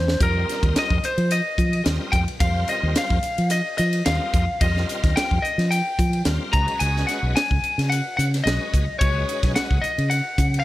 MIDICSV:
0, 0, Header, 1, 6, 480
1, 0, Start_track
1, 0, Key_signature, -4, "minor"
1, 0, Tempo, 549451
1, 183, Time_signature, 4, 2, 24, 8
1, 9299, End_track
2, 0, Start_track
2, 0, Title_t, "Lead electric guitar"
2, 0, Program_c, 0, 29
2, 0, Note_on_c, 0, 72, 71
2, 193, Note_off_c, 0, 72, 0
2, 198, Note_on_c, 0, 70, 71
2, 685, Note_off_c, 0, 70, 0
2, 686, Note_on_c, 0, 75, 84
2, 917, Note_on_c, 0, 72, 77
2, 921, Note_off_c, 0, 75, 0
2, 1153, Note_on_c, 0, 75, 74
2, 1157, Note_off_c, 0, 72, 0
2, 1595, Note_off_c, 0, 75, 0
2, 1851, Note_on_c, 0, 79, 88
2, 1918, Note_off_c, 0, 79, 0
2, 2100, Note_on_c, 0, 77, 81
2, 2349, Note_off_c, 0, 77, 0
2, 2351, Note_on_c, 0, 75, 63
2, 2595, Note_off_c, 0, 75, 0
2, 2600, Note_on_c, 0, 77, 83
2, 3039, Note_off_c, 0, 77, 0
2, 3069, Note_on_c, 0, 75, 71
2, 3291, Note_off_c, 0, 75, 0
2, 3302, Note_on_c, 0, 75, 82
2, 3527, Note_off_c, 0, 75, 0
2, 3545, Note_on_c, 0, 77, 84
2, 4029, Note_on_c, 0, 75, 72
2, 4040, Note_off_c, 0, 77, 0
2, 4506, Note_on_c, 0, 79, 74
2, 4522, Note_off_c, 0, 75, 0
2, 4738, Note_on_c, 0, 75, 66
2, 4754, Note_off_c, 0, 79, 0
2, 4985, Note_on_c, 0, 79, 72
2, 4990, Note_off_c, 0, 75, 0
2, 5433, Note_off_c, 0, 79, 0
2, 5703, Note_on_c, 0, 82, 84
2, 5929, Note_off_c, 0, 82, 0
2, 5935, Note_on_c, 0, 80, 96
2, 6172, Note_off_c, 0, 80, 0
2, 6176, Note_on_c, 0, 78, 72
2, 6423, Note_off_c, 0, 78, 0
2, 6427, Note_on_c, 0, 80, 83
2, 6894, Note_off_c, 0, 80, 0
2, 6897, Note_on_c, 0, 78, 81
2, 7127, Note_off_c, 0, 78, 0
2, 7137, Note_on_c, 0, 78, 90
2, 7204, Note_off_c, 0, 78, 0
2, 7370, Note_on_c, 0, 75, 76
2, 7849, Note_off_c, 0, 75, 0
2, 7853, Note_on_c, 0, 73, 82
2, 8306, Note_off_c, 0, 73, 0
2, 8347, Note_on_c, 0, 78, 81
2, 8574, Note_on_c, 0, 75, 73
2, 8594, Note_off_c, 0, 78, 0
2, 8821, Note_on_c, 0, 78, 72
2, 8828, Note_off_c, 0, 75, 0
2, 9252, Note_off_c, 0, 78, 0
2, 9256, Note_on_c, 0, 77, 67
2, 9299, Note_off_c, 0, 77, 0
2, 9299, End_track
3, 0, Start_track
3, 0, Title_t, "Tonewheel organ"
3, 0, Program_c, 1, 16
3, 172, Note_on_c, 1, 55, 57
3, 176, Note_on_c, 1, 60, 58
3, 177, Note_on_c, 1, 65, 57
3, 182, Note_on_c, 1, 70, 56
3, 186, Note_on_c, 1, 75, 69
3, 859, Note_off_c, 1, 55, 0
3, 860, Note_off_c, 1, 60, 0
3, 861, Note_off_c, 1, 65, 0
3, 864, Note_off_c, 1, 70, 0
3, 866, Note_off_c, 1, 75, 0
3, 1605, Note_on_c, 1, 55, 62
3, 1605, Note_on_c, 1, 60, 50
3, 1608, Note_on_c, 1, 65, 55
3, 1615, Note_on_c, 1, 70, 52
3, 1615, Note_on_c, 1, 75, 58
3, 1961, Note_off_c, 1, 55, 0
3, 1961, Note_off_c, 1, 60, 0
3, 1962, Note_off_c, 1, 65, 0
3, 1966, Note_off_c, 1, 70, 0
3, 1966, Note_off_c, 1, 75, 0
3, 2093, Note_on_c, 1, 55, 62
3, 2096, Note_on_c, 1, 60, 56
3, 2101, Note_on_c, 1, 65, 56
3, 2105, Note_on_c, 1, 70, 54
3, 2105, Note_on_c, 1, 72, 70
3, 2780, Note_off_c, 1, 55, 0
3, 2782, Note_off_c, 1, 60, 0
3, 2784, Note_off_c, 1, 65, 0
3, 2786, Note_off_c, 1, 70, 0
3, 2786, Note_off_c, 1, 72, 0
3, 3538, Note_on_c, 1, 60, 50
3, 3539, Note_on_c, 1, 55, 66
3, 3542, Note_on_c, 1, 65, 51
3, 3545, Note_on_c, 1, 70, 52
3, 3548, Note_on_c, 1, 75, 64
3, 3888, Note_off_c, 1, 60, 0
3, 3889, Note_off_c, 1, 55, 0
3, 3890, Note_off_c, 1, 65, 0
3, 3892, Note_off_c, 1, 70, 0
3, 3893, Note_off_c, 1, 75, 0
3, 4022, Note_on_c, 1, 60, 57
3, 4024, Note_on_c, 1, 55, 59
3, 4028, Note_on_c, 1, 65, 59
3, 4031, Note_on_c, 1, 70, 55
3, 4034, Note_on_c, 1, 77, 67
3, 4706, Note_off_c, 1, 60, 0
3, 4707, Note_off_c, 1, 55, 0
3, 4709, Note_off_c, 1, 65, 0
3, 4710, Note_off_c, 1, 70, 0
3, 4712, Note_off_c, 1, 77, 0
3, 5456, Note_on_c, 1, 55, 59
3, 5459, Note_on_c, 1, 60, 49
3, 5463, Note_on_c, 1, 65, 54
3, 5464, Note_on_c, 1, 70, 59
3, 5467, Note_on_c, 1, 77, 60
3, 5696, Note_on_c, 1, 56, 61
3, 5701, Note_on_c, 1, 61, 55
3, 5702, Note_off_c, 1, 55, 0
3, 5703, Note_off_c, 1, 60, 0
3, 5705, Note_off_c, 1, 65, 0
3, 5705, Note_on_c, 1, 66, 57
3, 5706, Note_off_c, 1, 70, 0
3, 5707, Note_off_c, 1, 77, 0
3, 5707, Note_on_c, 1, 71, 60
3, 5710, Note_on_c, 1, 75, 68
3, 6474, Note_off_c, 1, 56, 0
3, 6476, Note_off_c, 1, 61, 0
3, 6478, Note_off_c, 1, 66, 0
3, 6479, Note_off_c, 1, 71, 0
3, 6481, Note_off_c, 1, 75, 0
3, 7382, Note_on_c, 1, 56, 58
3, 7389, Note_on_c, 1, 61, 49
3, 7390, Note_on_c, 1, 66, 51
3, 7396, Note_on_c, 1, 71, 49
3, 7396, Note_on_c, 1, 75, 60
3, 7731, Note_off_c, 1, 56, 0
3, 7735, Note_off_c, 1, 61, 0
3, 7735, Note_off_c, 1, 66, 0
3, 7738, Note_off_c, 1, 71, 0
3, 7738, Note_off_c, 1, 75, 0
3, 7860, Note_on_c, 1, 56, 66
3, 7862, Note_on_c, 1, 61, 60
3, 7868, Note_on_c, 1, 66, 55
3, 7869, Note_on_c, 1, 71, 59
3, 7872, Note_on_c, 1, 75, 69
3, 8545, Note_off_c, 1, 56, 0
3, 8546, Note_off_c, 1, 61, 0
3, 8548, Note_off_c, 1, 66, 0
3, 8549, Note_off_c, 1, 71, 0
3, 8551, Note_off_c, 1, 75, 0
3, 9299, End_track
4, 0, Start_track
4, 0, Title_t, "Fingered electric bass"
4, 0, Program_c, 2, 33
4, 0, Note_on_c, 2, 40, 71
4, 135, Note_off_c, 2, 40, 0
4, 180, Note_on_c, 2, 41, 69
4, 374, Note_off_c, 2, 41, 0
4, 547, Note_on_c, 2, 39, 74
4, 638, Note_off_c, 2, 39, 0
4, 789, Note_on_c, 2, 41, 66
4, 879, Note_off_c, 2, 41, 0
4, 1027, Note_on_c, 2, 53, 70
4, 1222, Note_off_c, 2, 53, 0
4, 1384, Note_on_c, 2, 53, 78
4, 1576, Note_off_c, 2, 53, 0
4, 1624, Note_on_c, 2, 39, 72
4, 1727, Note_off_c, 2, 39, 0
4, 1857, Note_on_c, 2, 41, 73
4, 1963, Note_off_c, 2, 41, 0
4, 2102, Note_on_c, 2, 41, 78
4, 2295, Note_off_c, 2, 41, 0
4, 2474, Note_on_c, 2, 39, 82
4, 2563, Note_off_c, 2, 39, 0
4, 2709, Note_on_c, 2, 41, 73
4, 2800, Note_off_c, 2, 41, 0
4, 2955, Note_on_c, 2, 53, 67
4, 3147, Note_off_c, 2, 53, 0
4, 3313, Note_on_c, 2, 53, 87
4, 3502, Note_off_c, 2, 53, 0
4, 3550, Note_on_c, 2, 39, 74
4, 3651, Note_off_c, 2, 39, 0
4, 3790, Note_on_c, 2, 41, 84
4, 3891, Note_off_c, 2, 41, 0
4, 4028, Note_on_c, 2, 41, 77
4, 4220, Note_off_c, 2, 41, 0
4, 4400, Note_on_c, 2, 39, 87
4, 4487, Note_off_c, 2, 39, 0
4, 4641, Note_on_c, 2, 41, 74
4, 4728, Note_off_c, 2, 41, 0
4, 4874, Note_on_c, 2, 53, 78
4, 5067, Note_off_c, 2, 53, 0
4, 5233, Note_on_c, 2, 53, 73
4, 5423, Note_off_c, 2, 53, 0
4, 5464, Note_on_c, 2, 39, 73
4, 5569, Note_off_c, 2, 39, 0
4, 5709, Note_on_c, 2, 37, 78
4, 5812, Note_off_c, 2, 37, 0
4, 5949, Note_on_c, 2, 37, 83
4, 6141, Note_off_c, 2, 37, 0
4, 6313, Note_on_c, 2, 35, 80
4, 6404, Note_off_c, 2, 35, 0
4, 6558, Note_on_c, 2, 37, 68
4, 6647, Note_off_c, 2, 37, 0
4, 6796, Note_on_c, 2, 49, 69
4, 6989, Note_off_c, 2, 49, 0
4, 7150, Note_on_c, 2, 49, 73
4, 7342, Note_off_c, 2, 49, 0
4, 7387, Note_on_c, 2, 35, 66
4, 7491, Note_off_c, 2, 35, 0
4, 7632, Note_on_c, 2, 37, 81
4, 7734, Note_off_c, 2, 37, 0
4, 7872, Note_on_c, 2, 37, 75
4, 8063, Note_off_c, 2, 37, 0
4, 8239, Note_on_c, 2, 35, 77
4, 8327, Note_off_c, 2, 35, 0
4, 8479, Note_on_c, 2, 37, 70
4, 8567, Note_off_c, 2, 37, 0
4, 8720, Note_on_c, 2, 49, 67
4, 8911, Note_off_c, 2, 49, 0
4, 9068, Note_on_c, 2, 49, 79
4, 9260, Note_off_c, 2, 49, 0
4, 9299, End_track
5, 0, Start_track
5, 0, Title_t, "Muted fingered electric bass strokes"
5, 903, Note_on_c, 9, 29, 31
5, 990, Note_off_c, 9, 29, 0
5, 2823, Note_on_c, 9, 29, 32
5, 2911, Note_off_c, 9, 29, 0
5, 4747, Note_on_c, 9, 29, 32
5, 4834, Note_off_c, 9, 29, 0
5, 8593, Note_on_c, 9, 29, 34
5, 8681, Note_off_c, 9, 29, 0
5, 9299, End_track
6, 0, Start_track
6, 0, Title_t, "Drums"
6, 72, Note_on_c, 9, 38, 76
6, 159, Note_off_c, 9, 38, 0
6, 179, Note_on_c, 9, 36, 98
6, 180, Note_on_c, 9, 44, 78
6, 180, Note_on_c, 9, 51, 68
6, 266, Note_off_c, 9, 36, 0
6, 268, Note_off_c, 9, 44, 0
6, 268, Note_off_c, 9, 51, 0
6, 430, Note_on_c, 9, 44, 68
6, 430, Note_on_c, 9, 51, 47
6, 433, Note_on_c, 9, 38, 27
6, 518, Note_off_c, 9, 44, 0
6, 518, Note_off_c, 9, 51, 0
6, 520, Note_off_c, 9, 38, 0
6, 549, Note_on_c, 9, 36, 65
6, 552, Note_on_c, 9, 51, 47
6, 636, Note_off_c, 9, 36, 0
6, 639, Note_off_c, 9, 51, 0
6, 663, Note_on_c, 9, 44, 77
6, 663, Note_on_c, 9, 51, 74
6, 666, Note_on_c, 9, 38, 100
6, 750, Note_off_c, 9, 44, 0
6, 750, Note_off_c, 9, 51, 0
6, 753, Note_off_c, 9, 38, 0
6, 790, Note_on_c, 9, 36, 64
6, 877, Note_off_c, 9, 36, 0
6, 905, Note_on_c, 9, 44, 72
6, 905, Note_on_c, 9, 51, 48
6, 992, Note_off_c, 9, 44, 0
6, 992, Note_off_c, 9, 51, 0
6, 1029, Note_on_c, 9, 51, 52
6, 1116, Note_off_c, 9, 51, 0
6, 1142, Note_on_c, 9, 44, 69
6, 1142, Note_on_c, 9, 51, 68
6, 1229, Note_off_c, 9, 44, 0
6, 1229, Note_off_c, 9, 51, 0
6, 1381, Note_on_c, 9, 36, 63
6, 1386, Note_on_c, 9, 44, 67
6, 1386, Note_on_c, 9, 51, 50
6, 1468, Note_off_c, 9, 36, 0
6, 1474, Note_off_c, 9, 44, 0
6, 1474, Note_off_c, 9, 51, 0
6, 1511, Note_on_c, 9, 51, 49
6, 1598, Note_off_c, 9, 51, 0
6, 1622, Note_on_c, 9, 44, 73
6, 1622, Note_on_c, 9, 51, 68
6, 1624, Note_on_c, 9, 38, 101
6, 1709, Note_off_c, 9, 44, 0
6, 1709, Note_off_c, 9, 51, 0
6, 1712, Note_off_c, 9, 38, 0
6, 1858, Note_on_c, 9, 44, 67
6, 1858, Note_on_c, 9, 51, 52
6, 1860, Note_on_c, 9, 36, 73
6, 1945, Note_off_c, 9, 44, 0
6, 1945, Note_off_c, 9, 51, 0
6, 1947, Note_off_c, 9, 36, 0
6, 1991, Note_on_c, 9, 51, 49
6, 2078, Note_off_c, 9, 51, 0
6, 2100, Note_on_c, 9, 36, 89
6, 2100, Note_on_c, 9, 44, 75
6, 2100, Note_on_c, 9, 51, 77
6, 2187, Note_off_c, 9, 36, 0
6, 2187, Note_off_c, 9, 44, 0
6, 2187, Note_off_c, 9, 51, 0
6, 2339, Note_on_c, 9, 44, 73
6, 2339, Note_on_c, 9, 51, 53
6, 2427, Note_off_c, 9, 44, 0
6, 2427, Note_off_c, 9, 51, 0
6, 2582, Note_on_c, 9, 44, 80
6, 2582, Note_on_c, 9, 51, 83
6, 2584, Note_on_c, 9, 38, 104
6, 2669, Note_off_c, 9, 44, 0
6, 2669, Note_off_c, 9, 51, 0
6, 2672, Note_off_c, 9, 38, 0
6, 2711, Note_on_c, 9, 36, 66
6, 2799, Note_off_c, 9, 36, 0
6, 2819, Note_on_c, 9, 44, 65
6, 2819, Note_on_c, 9, 51, 54
6, 2906, Note_off_c, 9, 44, 0
6, 2906, Note_off_c, 9, 51, 0
6, 2952, Note_on_c, 9, 51, 57
6, 3040, Note_off_c, 9, 51, 0
6, 3056, Note_on_c, 9, 44, 75
6, 3056, Note_on_c, 9, 51, 68
6, 3144, Note_off_c, 9, 44, 0
6, 3144, Note_off_c, 9, 51, 0
6, 3300, Note_on_c, 9, 44, 77
6, 3300, Note_on_c, 9, 51, 59
6, 3387, Note_off_c, 9, 44, 0
6, 3387, Note_off_c, 9, 51, 0
6, 3431, Note_on_c, 9, 51, 54
6, 3518, Note_off_c, 9, 51, 0
6, 3543, Note_on_c, 9, 44, 79
6, 3543, Note_on_c, 9, 51, 77
6, 3546, Note_on_c, 9, 38, 98
6, 3631, Note_off_c, 9, 44, 0
6, 3631, Note_off_c, 9, 51, 0
6, 3633, Note_off_c, 9, 38, 0
6, 3787, Note_on_c, 9, 44, 70
6, 3787, Note_on_c, 9, 51, 53
6, 3788, Note_on_c, 9, 36, 65
6, 3874, Note_off_c, 9, 44, 0
6, 3874, Note_off_c, 9, 51, 0
6, 3876, Note_off_c, 9, 36, 0
6, 4026, Note_on_c, 9, 44, 73
6, 4026, Note_on_c, 9, 51, 76
6, 4027, Note_on_c, 9, 36, 90
6, 4113, Note_off_c, 9, 44, 0
6, 4113, Note_off_c, 9, 51, 0
6, 4114, Note_off_c, 9, 36, 0
6, 4164, Note_on_c, 9, 38, 30
6, 4251, Note_off_c, 9, 38, 0
6, 4274, Note_on_c, 9, 44, 68
6, 4274, Note_on_c, 9, 51, 50
6, 4361, Note_off_c, 9, 44, 0
6, 4361, Note_off_c, 9, 51, 0
6, 4400, Note_on_c, 9, 36, 73
6, 4403, Note_on_c, 9, 51, 48
6, 4406, Note_on_c, 9, 38, 27
6, 4487, Note_off_c, 9, 36, 0
6, 4491, Note_off_c, 9, 51, 0
6, 4493, Note_off_c, 9, 38, 0
6, 4516, Note_on_c, 9, 44, 82
6, 4516, Note_on_c, 9, 51, 77
6, 4518, Note_on_c, 9, 38, 106
6, 4603, Note_off_c, 9, 44, 0
6, 4603, Note_off_c, 9, 51, 0
6, 4606, Note_off_c, 9, 38, 0
6, 4640, Note_on_c, 9, 36, 54
6, 4728, Note_off_c, 9, 36, 0
6, 4759, Note_on_c, 9, 44, 66
6, 4759, Note_on_c, 9, 51, 45
6, 4846, Note_off_c, 9, 44, 0
6, 4846, Note_off_c, 9, 51, 0
6, 4883, Note_on_c, 9, 51, 50
6, 4886, Note_on_c, 9, 38, 28
6, 4970, Note_off_c, 9, 51, 0
6, 4973, Note_off_c, 9, 38, 0
6, 4993, Note_on_c, 9, 44, 70
6, 4993, Note_on_c, 9, 51, 68
6, 5080, Note_off_c, 9, 44, 0
6, 5080, Note_off_c, 9, 51, 0
6, 5230, Note_on_c, 9, 36, 71
6, 5233, Note_on_c, 9, 44, 78
6, 5233, Note_on_c, 9, 51, 54
6, 5318, Note_off_c, 9, 36, 0
6, 5321, Note_off_c, 9, 44, 0
6, 5321, Note_off_c, 9, 51, 0
6, 5356, Note_on_c, 9, 51, 53
6, 5443, Note_off_c, 9, 51, 0
6, 5461, Note_on_c, 9, 44, 70
6, 5461, Note_on_c, 9, 51, 68
6, 5463, Note_on_c, 9, 38, 90
6, 5548, Note_off_c, 9, 44, 0
6, 5548, Note_off_c, 9, 51, 0
6, 5551, Note_off_c, 9, 38, 0
6, 5703, Note_on_c, 9, 44, 74
6, 5703, Note_on_c, 9, 51, 47
6, 5708, Note_on_c, 9, 36, 74
6, 5790, Note_off_c, 9, 44, 0
6, 5790, Note_off_c, 9, 51, 0
6, 5796, Note_off_c, 9, 36, 0
6, 5835, Note_on_c, 9, 51, 52
6, 5922, Note_off_c, 9, 51, 0
6, 5942, Note_on_c, 9, 44, 71
6, 5942, Note_on_c, 9, 51, 70
6, 6029, Note_off_c, 9, 44, 0
6, 6029, Note_off_c, 9, 51, 0
6, 6084, Note_on_c, 9, 38, 29
6, 6172, Note_off_c, 9, 38, 0
6, 6189, Note_on_c, 9, 44, 68
6, 6189, Note_on_c, 9, 51, 55
6, 6191, Note_on_c, 9, 38, 27
6, 6276, Note_off_c, 9, 44, 0
6, 6276, Note_off_c, 9, 51, 0
6, 6279, Note_off_c, 9, 38, 0
6, 6434, Note_on_c, 9, 44, 83
6, 6434, Note_on_c, 9, 51, 82
6, 6437, Note_on_c, 9, 38, 108
6, 6522, Note_off_c, 9, 44, 0
6, 6522, Note_off_c, 9, 51, 0
6, 6524, Note_off_c, 9, 38, 0
6, 6559, Note_on_c, 9, 36, 58
6, 6647, Note_off_c, 9, 36, 0
6, 6670, Note_on_c, 9, 44, 65
6, 6670, Note_on_c, 9, 51, 49
6, 6758, Note_off_c, 9, 44, 0
6, 6758, Note_off_c, 9, 51, 0
6, 6805, Note_on_c, 9, 51, 58
6, 6808, Note_on_c, 9, 38, 29
6, 6893, Note_off_c, 9, 51, 0
6, 6895, Note_off_c, 9, 38, 0
6, 6919, Note_on_c, 9, 44, 69
6, 6919, Note_on_c, 9, 51, 68
6, 7006, Note_off_c, 9, 44, 0
6, 7006, Note_off_c, 9, 51, 0
6, 7156, Note_on_c, 9, 44, 74
6, 7156, Note_on_c, 9, 51, 56
6, 7244, Note_off_c, 9, 44, 0
6, 7244, Note_off_c, 9, 51, 0
6, 7286, Note_on_c, 9, 51, 58
6, 7289, Note_on_c, 9, 38, 27
6, 7373, Note_off_c, 9, 51, 0
6, 7376, Note_off_c, 9, 38, 0
6, 7398, Note_on_c, 9, 44, 72
6, 7398, Note_on_c, 9, 51, 70
6, 7401, Note_on_c, 9, 38, 94
6, 7486, Note_off_c, 9, 44, 0
6, 7486, Note_off_c, 9, 51, 0
6, 7488, Note_off_c, 9, 38, 0
6, 7632, Note_on_c, 9, 36, 69
6, 7637, Note_on_c, 9, 44, 67
6, 7637, Note_on_c, 9, 51, 52
6, 7719, Note_off_c, 9, 36, 0
6, 7724, Note_off_c, 9, 44, 0
6, 7724, Note_off_c, 9, 51, 0
6, 7871, Note_on_c, 9, 36, 98
6, 7872, Note_on_c, 9, 44, 71
6, 7872, Note_on_c, 9, 51, 77
6, 7959, Note_off_c, 9, 36, 0
6, 7959, Note_off_c, 9, 44, 0
6, 7959, Note_off_c, 9, 51, 0
6, 8113, Note_on_c, 9, 44, 74
6, 8113, Note_on_c, 9, 51, 54
6, 8201, Note_off_c, 9, 44, 0
6, 8201, Note_off_c, 9, 51, 0
6, 8239, Note_on_c, 9, 36, 66
6, 8239, Note_on_c, 9, 51, 54
6, 8242, Note_on_c, 9, 38, 27
6, 8326, Note_off_c, 9, 36, 0
6, 8326, Note_off_c, 9, 51, 0
6, 8329, Note_off_c, 9, 38, 0
6, 8349, Note_on_c, 9, 44, 88
6, 8349, Note_on_c, 9, 51, 74
6, 8352, Note_on_c, 9, 38, 101
6, 8437, Note_off_c, 9, 44, 0
6, 8437, Note_off_c, 9, 51, 0
6, 8439, Note_off_c, 9, 38, 0
6, 8479, Note_on_c, 9, 36, 64
6, 8567, Note_off_c, 9, 36, 0
6, 8594, Note_on_c, 9, 44, 69
6, 8594, Note_on_c, 9, 51, 47
6, 8681, Note_off_c, 9, 44, 0
6, 8681, Note_off_c, 9, 51, 0
6, 8722, Note_on_c, 9, 51, 53
6, 8810, Note_off_c, 9, 51, 0
6, 8830, Note_on_c, 9, 44, 65
6, 8830, Note_on_c, 9, 51, 65
6, 8917, Note_off_c, 9, 44, 0
6, 8917, Note_off_c, 9, 51, 0
6, 9069, Note_on_c, 9, 36, 70
6, 9072, Note_on_c, 9, 44, 80
6, 9072, Note_on_c, 9, 51, 53
6, 9157, Note_off_c, 9, 36, 0
6, 9159, Note_off_c, 9, 44, 0
6, 9159, Note_off_c, 9, 51, 0
6, 9207, Note_on_c, 9, 51, 52
6, 9295, Note_off_c, 9, 51, 0
6, 9299, End_track
0, 0, End_of_file